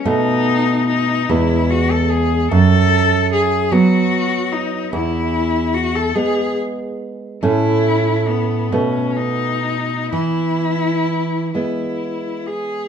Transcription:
X:1
M:6/8
L:1/16
Q:3/8=48
K:E
V:1 name="Cello"
D4 D2 E2 F A G2 | A4 G2 F4 D2 | E4 F A G2 z4 | E4 B,2 C2 D4 |
E6 E4 G2 |]
V:2 name="Nylon-string guitar" clef=bass
[B,,A,B,]6 [E,,G,B,]6 | F,,6 [F,B,]6 | E,,6 [G,B,]6 | [A,,A,C]6 [B,,A,B,]6 |
E,6 [G,B,]6 |]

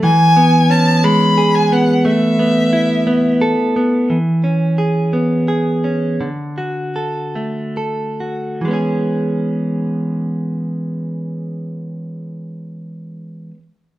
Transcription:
X:1
M:6/8
L:1/16
Q:3/8=55
K:Emix
V:1 name="Violin"
g4 a2 b3 g f2 | e8 z4 | z12 | z12 |
z12 | z12 |]
V:2 name="Clean electric guitar"
E,2 B,2 C2 G,2 G2 B,2 | A,2 B,2 E2 B,2 A2 B,2 | E,2 C2 G2 B,2 G2 C2 | D,2 F2 A2 A,2 A2 F2 |
[E,G,B,CG]12- | [E,G,B,CG]12 |]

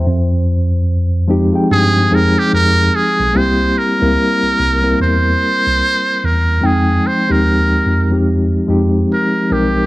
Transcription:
X:1
M:4/4
L:1/16
Q:"Swing 16ths" 1/4=73
K:Fm
V:1 name="Muted trumpet"
z8 A2 B G B2 A2 | c2 B6 c6 B2 | A2 c B4 z4 z B2 G2 |]
V:2 name="Reed electric piano"
c z4 z [F,A,CEG] [F,CEAg]2 z [F,A,CEA]4- [F,A,CEA] z | [G,B,C=EG]2 z [G,B,CEB]3 z [G,B,CEB]6- [G,B,CEB] z2 | [F,A,CEg]2 z [F,A,CEG]3 z [F,A,CEG]2 z [F,A,CEG]3 z [F,A,CEB]2 |]
V:3 name="Tine electric piano" clef=bass
F,,6- F,, z G,,2 F,, z F,,2 z =B,,, | C,,2 z D,, z C,, C,,2 =E,,2 z C,, z2 E,,2 | F,,2 z E,,3 F,,4 F,,2 z2 =B,,,2 |]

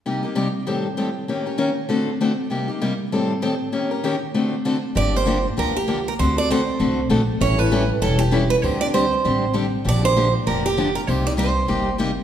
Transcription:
X:1
M:4/4
L:1/8
Q:"Swing" 1/4=196
K:Gm
V:1 name="Steel-string acoustic guitar"
z8 | z8 | z8 | z8 |
d c2 z B G2 B | c d c4 z2 | ^c =B2 z A G2 B | c d c4 z2 |
d c2 z B G2 B | c d c4 z2 |]
V:2 name="Steel-string acoustic guitar"
[C,G,B,EG] [B,EG] [C,G,B,EG] z [A,,E,G,CGA] z [A,,E,G,CGA] z | [E,B,_DGB] [DGB] [E,B,DGB] z [=D,A,C^FA] z [D,A,CFA] z | [C,G,B,EG] [B,EG] [C,G,B,EG] z [A,,E,G,CGA] z [A,,E,G,CGA] z | [E,B,_DGB] [DGB] [E,B,DGB] z [=D,A,C^FA] z [D,A,CFA] z |
[D,F,B,DG] [B,DG] [D,F,B,DG] z [D,F,B,DG] z [D,F,B,DG] z | [D,A,C^FA] [CFA] [D,A,CFA] z [D,A,CFA] z [D,A,CFA] z | [=E,G,^C=EA] [CEA] [E,G,CEA] z [E,G,CEA] z [E,G,CEA] z | [D,G,CDG] [CDG] [D,G,CDG] z [D,G,CDG] z [D,G,CDG] z |
[D,F,B,DG] [B,DG] [D,F,B,DG] z [D,F,B,DG] z [D,F,B,DG] z | [C,G,B,EG] [B,EG] [C,G,B,EG] z [C,G,B,EG] z [C,G,B,EG] z |]
V:3 name="Upright bass" clef=bass
z8 | z8 | z8 | z8 |
G,,,4 D,,4 | D,,4 C,,2 B,,,2 | A,,,4 =E,,,4 | D,,4 A,,,4 |
B,,,4 F,,,4 | C,,4 G,,,4 |]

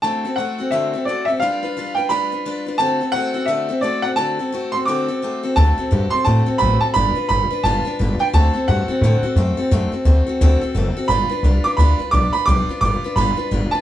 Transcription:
X:1
M:4/4
L:1/8
Q:"Swing" 1/4=174
K:Dmix
V:1 name="Upright piano"
a2 f2 e2 d e | =f3 g b3 z | a2 f2 e2 d f | a3 c' d'3 z |
a3 c' a2 b a | b2 b2 a2 z g | a2 f4 z2 | z8 |
b3 d' b2 d' b | d'2 d'2 b2 z a |]
V:2 name="Steel-string acoustic guitar"
[D,A,CFA] [CFA] [A,CFA] [CFA] [D,A,CFA] [CFA] [A,CFA] [CFA] | [G,D=FB] [DFB] [G,DFB] [DFB] [G,DFB] [DFB] [G,DFB] [DFB] | [D,A,CFA] [CFA] [A,CFA] [CFA] [D,A,CFA] [CFA] [A,CFA] [CFA] | [D,A,CFA] [CFA] [A,CFA] [CFA] [D,A,CFA] [CFA] [A,CFA] [CFA] |
[D,A,CFA] [CFA] [A,CFA] [CFA] [D,A,CFA] [CFA] [A,CFA] [CFA] | [G,D=FB] [DFB] [G,DFB] [DFB] [G,DFB] [DFB] [G,DFB] [DFB] | [D,A,CFA] [CFA] [A,CFA] [CFA] [D,A,CFA] [CFA] [A,CFA] [CFA] | [D,A,CFA] [CFA] [A,CFA] [CFA] [D,A,CFA] [CFA] [A,CFA] [CFA] |
[G,D=FB] [DFB] [G,DFB] [DFB] [G,DFB] [DFB] [G,DFB] [DFB] | [G,D=FB] [DFB] [G,DFB] [DFB] [G,DFB] [DFB] [G,DFB] [DFB] |]
V:3 name="Upright bass" clef=bass
z8 | z8 | z8 | z8 |
D,, z G,, z A,, z A,,, z | G,,, z G,,, z G,,, z G,,, z | D,, z G,, z A,, z F,, z | F,, z D,, z D,, z F,,, z |
G,,, z C,, z D,, z B,,, z | B,,, z G,,, z G,,, z G,,, z |]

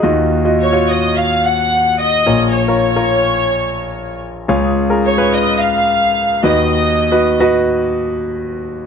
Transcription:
X:1
M:4/4
L:1/16
Q:1/4=108
K:Ebm
V:1 name="Violin section"
z4 d2 e2 f2 g4 e2- | e2 d12 z2 | z4 d2 e2 f6 e2- | e6 z8 z2 |]
V:2 name="Grand piano"
[FGe]2 z [FGe]2 [FGd]6 z4 z | [FBd]2 z [FBd]2 [FBd]6 z4 z | [FAd]2 z [FAB]2 [FAc]6 z3 [Gce]2- | [Gce]2 z [Gce]2 [Gce]6 z4 z |]
V:3 name="Grand piano" clef=bass
[E,,E,]16 | [B,,,B,,]16 | [D,,D,]12- [D,,D,]2 [E,,E,]2- | [E,,E,]12- [E,,E,]2 z2 |]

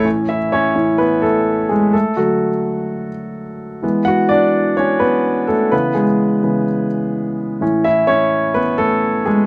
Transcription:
X:1
M:4/4
L:1/8
Q:1/4=127
K:C#phr
V:1 name="Grand piano"
z [Ee] [Cc]2 [B,B] [A,A]2 [G,G] | [A,A] F4 z3 | z [Ff] [Dd]2 [Cc] [B,B]2 [A,A] | [B,B] [G,G]4 z3 |
z [Ee] [Cc]2 [B,B] [A,A]2 [G,G] |]
V:2 name="Grand piano" clef=bass
[A,,E,C] z2 [A,,E,C] z4 | z [D,F,A,] z6 | [E,G,B,]8 | [C,E,] z2 [C,E,B,] z4 |
[A,,E,C]8 |]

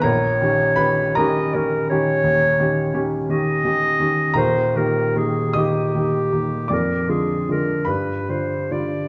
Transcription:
X:1
M:12/8
L:1/8
Q:3/8=53
K:D#phr
V:1 name="Clarinet"
c3 d A c3 z d3 | [K:Eb] c B A G3 B A B =B c d |]
V:2 name="Grand piano"
[Aa]2 [Bb] [Aa]8- [Aa] | [K:Eb] [Bb]3 [ee']3 [dd']3 [=B=b]3 |]
V:3 name="Grand piano"
A,,, [D,C=G] [D,CG] [D,CG] [D,CG] [D,CG] D,, [D,CG] [D,CG] [D,CG] [D,CG] [D,CG] | [K:Eb] [E,,,E,,] [E,B,G] [E,B,G] [E,B,G] [E,B,G] [E,B,G] F,, [D,A,F] [D,A,F] G,, [D,G,F] [D,G,F] |]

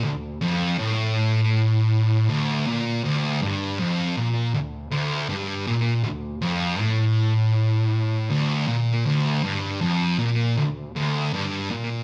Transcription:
X:1
M:4/4
L:1/8
Q:1/4=80
K:Dm
V:1 name="Distorted electric guitar" clef=bass
D,, F,, A,,4 D,, B,, | D,, G,, F,, B,, D,, D,, G,, B,, | D,, F,, A,,4 D,, B,, | D,, G,, F,, B,, D,, D,, G,, B,, |]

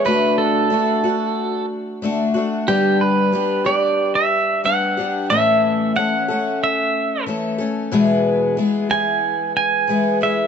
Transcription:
X:1
M:4/4
L:1/16
Q:1/4=92
K:A
V:1 name="Pedal steel guitar"
B2 A8 z6 | =G2 B4 d3 e3 f4 | e4 f4 e4 z4 | z6 g4 g4 e2 |]
V:2 name="Twelve-string acoustic guitar"
[D,A,DF]4 [D,A,DF]2 [A,DF]6 [D,A,DF]2 [A,DF]2 | [=G,,D,=G,B,D=G]4 [G,B,DG]2 [G,B,DG]6 [G,B,DG]2 [G,B,DG]2 | [A,,E,A,CA]4 [E,A,CA]2 [A,CA]6 [E,A,CA]2 [A,CA]2 | [E,,B,,E,G,B,G]4 [E,G,B,G]2 [E,G,B,G]6 [E,G,B,G]2 [E,G,B,G]2 |]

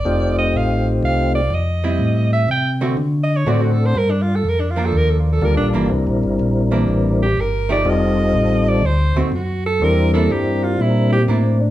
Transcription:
X:1
M:4/4
L:1/16
Q:"Swing" 1/4=123
K:Cdor
V:1 name="Alto saxophone"
d2 e2 f2 z2 f2 d2 e4- | e2 =e2 g2 z4 _e _d =d ^F A c | B D F A B D F A B A F A B D z2 | z8 z2 G2 B2 d2 |
e6 d2 c2 E2 ^F2 A2 | B2 A2 G2 F2 =E2 G2 z4 |]
V:2 name="Tonewheel organ"
[A,CEFG]8- [A,CEFG]2 z6 | z12 [A,CD^FA]4 | z12 [G,B,DFA]4 | [G,CD=EB]8- [G,CDEB]2 z6 |
[G,CEFA]8 z8 | [G,CD=EB]8- [G,CDEB]2 C4 D2 |]
V:3 name="Hollow-body jazz guitar"
z12 z2 [G,C=E]2- | [G,C=E]4 z2 [D,A,C_G]2 z4 [D,A,C^F]2 z2 | z6 [F,B,D]6 z2 [=E,B,D]2 | z6 [=E,B,D]6 z2 [F,A,_EG]2 |
z8 z2 [D,A,C^F]2 z4 | z2 [B,D=E]2 z8 [B,DE]2 z2 |]
V:4 name="Tonewheel organ" clef=bass
F,,,4 A,,,4 C,,4 F,,4 | A,,4 C,4 D,4 A,,4 | G,,4 F,,4 E,,4 (3D,,2 B,,,2 G,,,2 | (3C,,2 B,,,2 G,,,2 B,,,4 A,,,4 G,,,4 |
F,,,4 A,,,4 D,,2 D,,2 ^F,,4 | =E,,4 G,,4 B,,4 A,,4 |]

